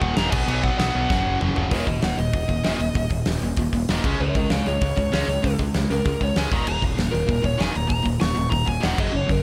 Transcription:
Already playing: D#2 A#2 D#3
0.01 D#1 F#5, kick
0.16 D#1 D#2 A#2 D#3 A#5, snare, crash
0.31 B1 B2 F#3 B3 G#5, kick, crash
0.48 B1 B2 F#3 B3, crash
0.63 F#5, kick
0.78 B1 B2 F#3 B3 F#5, snare, crash
0.94 B1 B2 F#3 B3
1.10 F#1 F#2 C#3 F#3, kick, snare
1.26 F#1
1.41 F#1 F#2 C#3 F#3, mid tom
1.55 F1 F#2 C#3 F#3, floor tom
1.71 D#1 D#2 A#2 D#3 A#4 C#5, kick, open hi-hat
1.86 D#1 D#2 A#2 F#4 D#5, kick, open hi-hat
2.02 D#1 D#2 A#2 D#5 F#5, snare, open hi-hat
2.17 D#1 D#2 A#2 D#5, open hi-hat
2.33 D#1 D#2 A#2, kick, open hi-hat
2.48 D#1 D#2 A#2, kick, open hi-hat
2.63 D#1 D#2 A#2 D#3, snare, open hi-hat
2.79 D#1 D#2 A#2, open hi-hat
2.95 D#1 D#2 A#2, kick, open hi-hat
3.10 D#1 D#2 A#2, kick, open hi-hat
3.26 D#1 D#2 A#2, snare, open hi-hat
3.42 D#1 D#2 A#2, open hi-hat
3.56 D#1 D#2 A#2, kick, open hi-hat
3.73 D#1 D#2 A#2, kick, open hi-hat
3.89 D#1 D#2 A#2 D#3, snare, open hi-hat
4.04 C#2 C#3 G#3 C#4, kick, crash
4.19 C#2 C#3 G#3 A#4 C#5
4.35 C#2 C#3 G#3 A#4 D#5, kick, open hi-hat
4.50 C#2 C#3 G#3 F5 G#5, snare, open hi-hat
4.66 C#2 C#3 G#3 C#5, open hi-hat
4.81 C#2 C#3 G#3, kick, open hi-hat
4.96 C#2 C#3 G#3, kick, open hi-hat
5.12 C#2 C#3 G#3 C#4, snare, open hi-hat
5.27 C#2 C#3 G#3, open hi-hat
5.42 C#2 C#3 G#3, kick, open hi-hat
5.59 C#2 C#3 G#3, kick, open hi-hat
5.74 C#2 C#3 G#3, snare, open hi-hat
5.90 C#2 C#3 G#3 A#4, open hi-hat
6.05 C#2 C#3 G#3, kick, open hi-hat
6.21 C#2 C#3 G#3 C#5, kick, open hi-hat
6.36 C#2 C#3 G#3 C#4 G#5, snare, open hi-hat
6.51 D#1 D#2 A#2 D#3 A#5, kick, open hi-hat
6.65 D#1 D#2 A#2 A#5, crash
6.82 D#1 D#2 A#2, kick, open hi-hat
6.96 D#1 D#2 A#2, snare, open hi-hat
7.12 D#1 D#2 A#2 A#4, open hi-hat
7.28 D#1 D#2 A#2, kick, open hi-hat
7.42 D#1 D#2 A#2 C#5, kick, open hi-hat
7.58 D#1 D#2 A#2 D#3 G#5, snare, open hi-hat
7.72 D#1 D#2 A#2 A#5, open hi-hat
7.87 D#1 D#2 A#2 A#5, kick, open hi-hat
8.03 D#1 D#2 A#2, kick, open hi-hat
8.20 D#1 D#2 A#2 C#6, snare, open hi-hat
8.35 D#1 D#2 A#2, open hi-hat
8.50 D#1 D#2 A#2 A#5, kick, open hi-hat
8.65 D#1 D#2 A#2 G#5, kick, open hi-hat
8.80 D#1 D#2 A#2 D#3 F#5, snare, open hi-hat
8.96 F#1 F#2 C#3 F#3 D#5, kick, crash
9.11 F#1 F#2 C#3
9.16 C#5
9.27 F#1 F#2 C#3, kick, open hi-hat
9.31 A#4

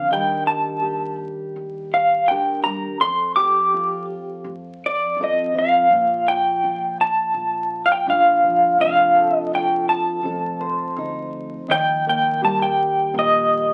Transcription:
0.08 D#2 D#3 G3 D4 G4
0.13 A#4 G5
0.47 A5
0.82 G4
1.56 D#2
1.94 F5
2.27 D#2 D4 G4 G5
2.31 A#4
2.64 G3 A#5
3.00 F2 A4 C6
3.36 G4 D6
3.74 F4
4.44 F2
4.86 D5
5.17 F2 C4
5.21 F4 A4 D#5
5.54 F3
5.58 F5
5.90 A#1 A#2 F4
6.28 G5
6.64 F4
7.01 A5
7.34 A#1
7.86 F5
7.92 G5
8.06 A#1 D4 F4 F5
8.43 F3
8.78 F1 F2 F3 D4 F4 F5
9.16 A4
9.36 D#5
9.53 F4 G5
9.89 A5
10.23 F1 F2 A4
10.61 C5
10.96 D2 D#4
11.68 D#2 D#3 G5
12.07 A#3 G5
12.42 D#2 G3 G4 A5
12.62 G5
13.13 A#1 A#2
13.19 D#5

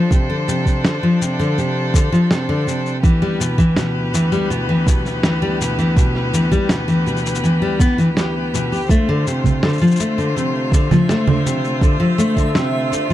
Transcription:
Already playing: F3 D4 A4 C5
0.11 C3, kick, cabasa
0.30 D3
0.48 C3, cabasa
0.66 kick, cabasa
0.85 D3, snare, cabasa
1.03 F3
1.21 C3, cabasa
1.39 D3, cabasa
1.58 C3, cabasa
1.94 D3, kick, cabasa
2.12 F3, cabasa
2.31 C3, snare, cabasa
2.49 D3
2.67 C3, cabasa
2.86 cabasa
3.03 D2 E3 B3 G4 B4, kick, cabasa
3.22 G3
3.40 B2, cabasa
3.58 E3, kick, cabasa
3.77 B2, snare, cabasa
4.14 E3, cabasa
4.32 G3, cabasa
4.50 B2, cabasa
4.69 E3
4.87 B2, kick, cabasa
5.05 snare, cabasa
5.23 E3, snare, cabasa
5.42 G3
5.61 B2, cabasa
5.79 E3, cabasa
5.96 B2, kick, cabasa
6.15 snare
6.34 E3, cabasa
6.51 G3, kick, cabasa
6.69 B2, snare, cabasa
6.88 E3, cabasa
7.06 B2, cabasa
7.17 cabasa
7.26 cabasa
7.35 cabasa
7.44 E3, cabasa
7.62 G3
7.80 B3, kick, cabasa
7.98 E3, cabasa
8.17 G4, snare, cabasa
8.54 B2, cabasa
8.72 G4, cabasa
8.75 cabasa
8.78 cabasa
8.80 cabasa
8.82 cabasa
8.84 cabasa
8.86 cabasa
8.88 D3 A3 F4 C5, kick, cabasa
8.91 E5 E6, cabasa
9.09 D3
9.27 C3, cabasa
9.44 kick, low conga, cabasa
9.63 D3, snare, cabasa
9.68 cabasa
9.73 cabasa
9.78 F3, cabasa
9.82 cabasa
9.87 cabasa
9.91 cabasa
9.96 cabasa
10.00 A3, cabasa
10.18 D3, cabasa
10.36 C3, cabasa
10.72 D3, kick, cabasa
10.91 F3, snare, low conga, cabasa
11.09 A3, snare, cabasa
11.27 D3, low conga
11.46 C3, cabasa
11.64 cabasa
11.81 D3, kick, cabasa
12.00 F3
12.18 A3, cabasa
12.36 D3, kick, cabasa
12.55 C3, snare, cabasa
12.92 D3, cabasa
13.10 F3

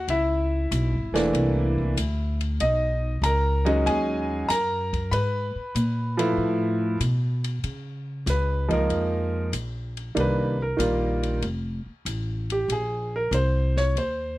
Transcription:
Already playing: F#5
0.08 C#2 E4 E5, ride
0.71 B1, hi-hat pedal, ride
0.92 G#1
1.12 E1 E3 A3 A#3 D4, snare, ride
1.33 C2, ride
1.78 kick
1.97 D2, hi-hat pedal, ride
2.41 ride
2.60 B1 D#4 D#5, ride
3.22 C#2 A#4 A#5, hi-hat pedal, ride
3.65 F#3 G#3 C#4 D#4, ride
3.86 D#2 G#4 G#5, ride
4.49 F#2 A#4 A#5, snare, hi-hat pedal, ride
4.93 kick, ride
5.11 G#2 B4 B5, ride
5.55 muted upright bass stroke
5.75 A#2, hi-hat pedal, ride
6.17 F3 A3 E4 B4, ride
6.37 A2
7.00 B2, hi-hat pedal, ride
7.44 ride
7.63 C#3, ride
8.26 C#2 B4, snare, hi-hat pedal, ride
8.68 F3 G#3 A#3 D#4, kick, ride
8.73 A#4
8.89 F2, ride
9.52 A#1, hi-hat pedal, ride
9.97 ride
10.15 C2 D#3 G3 A#3 D4, ride
10.20 B4
10.62 A#4
10.77 A#1 D#3 G3 A#3 F4, hi-hat pedal, ride
11.23 ride
11.42 F1, ride
11.86 muted upright bass stroke
12.05 A1, hi-hat pedal, ride
12.50 G4, ride
12.68 A#1, ride
12.72 G#4
13.16 A#4
13.31 C2 C5, hi-hat pedal, ride
13.77 C#5, snare
13.95 D#2 C5, ride

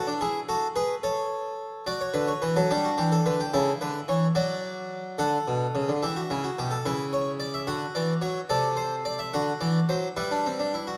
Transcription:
Already playing: A4
0.07 D4
0.21 E4 G#4
0.49 F#4 A4
0.76 G#4 B4
1.03 A4 C#5
1.87 F#4 D5
2.01 C#5
2.14 D3 B4
2.28 C#5
2.42 E3 B4
2.56 F#3 A4
2.71 G3 D4 G4
2.84 F#4
2.98 E3 G4
3.12 A4
3.26 D3 B4
3.40 G4
3.54 C#3 E4 A4
3.81 D3 B4
4.08 E3 C#5
4.35 F#3 F#4 D5
5.18 D3 A4 F#5
5.48 B2
5.75 C#3
5.89 D3
6.02 E3 G4 E5
6.16 F#4
6.30 C#3 E4
6.44 F#4
6.59 B2 G4
6.71 A4
6.86 C#3 E4 B4
7.13 C#5
7.40 D5
7.54 E5
7.67 D3 F#4 F#5
7.95 E3 D5
8.22 F#3 C#5
8.49 C3 A4 D5
8.77 C5
9.05 D5
9.19 E5
9.33 D3 F#4 F#5
9.61 E3 D5
9.89 F#3 C5
10.17 G3 E4 B4
10.31 D4
10.46 C4
10.59 D4
10.74 E4
10.87 F#4

